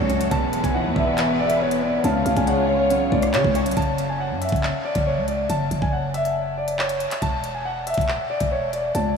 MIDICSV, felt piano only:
0, 0, Header, 1, 2, 480
1, 0, Start_track
1, 0, Key_signature, 3, "minor"
1, 0, Tempo, 431655
1, 350, Time_signature, 4, 2, 24, 8
1, 10197, End_track
2, 0, Start_track
2, 0, Title_t, "Felt piano"
2, 0, Program_c, 0, 0
2, 0, Control_c, 0, 64, 127
2, 0, Note_on_c, 0, 42, 80
2, 0, Note_on_c, 0, 54, 99
2, 0, Note_on_c, 0, 61, 98
2, 105, Note_off_c, 0, 61, 0
2, 105, Note_on_c, 0, 61, 95
2, 112, Note_off_c, 0, 54, 0
2, 348, Note_off_c, 0, 61, 0
2, 350, Note_on_c, 0, 40, 99
2, 351, Note_off_c, 0, 42, 0
2, 362, Control_c, 0, 64, 0
2, 561, Control_c, 0, 64, 127
2, 573, Note_off_c, 0, 40, 0
2, 589, Note_on_c, 0, 40, 84
2, 834, Note_on_c, 0, 52, 84
2, 1069, Note_on_c, 0, 59, 93
2, 1292, Note_off_c, 0, 40, 0
2, 1308, Note_on_c, 0, 40, 89
2, 1533, Note_off_c, 0, 40, 0
2, 1550, Note_on_c, 0, 40, 80
2, 1772, Note_off_c, 0, 59, 0
2, 1788, Note_on_c, 0, 59, 96
2, 2012, Note_off_c, 0, 59, 0
2, 2029, Note_on_c, 0, 59, 89
2, 2032, Note_off_c, 0, 52, 0
2, 2270, Note_off_c, 0, 40, 0
2, 2270, Note_off_c, 0, 59, 0
2, 2271, Note_on_c, 0, 49, 99
2, 2282, Control_c, 0, 64, 0
2, 2495, Note_off_c, 0, 49, 0
2, 2499, Control_c, 0, 64, 127
2, 2512, Note_on_c, 0, 49, 78
2, 2746, Note_on_c, 0, 56, 89
2, 2992, Note_on_c, 0, 73, 82
2, 3215, Note_off_c, 0, 49, 0
2, 3232, Note_on_c, 0, 49, 89
2, 3451, Note_off_c, 0, 49, 0
2, 3468, Note_on_c, 0, 49, 83
2, 3693, Note_off_c, 0, 73, 0
2, 3709, Note_on_c, 0, 73, 98
2, 3936, Note_off_c, 0, 73, 0
2, 3948, Note_off_c, 0, 56, 0
2, 3952, Note_on_c, 0, 73, 92
2, 4189, Note_off_c, 0, 49, 0
2, 4191, Note_off_c, 0, 73, 0
2, 4205, Control_c, 0, 64, 0
2, 10197, End_track
0, 0, End_of_file